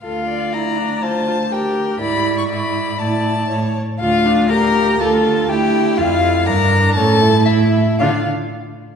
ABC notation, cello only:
X:1
M:2/4
L:1/8
Q:1/4=121
K:Dm
V:1 name="Cello" clef=bass
D,,4- | D,,4 | ^G,,4 | A,,2 A,, z |
D,,4 | D,,2 D,,2 | F,,2 G,,2 | A,,3 z |
D, z3 |]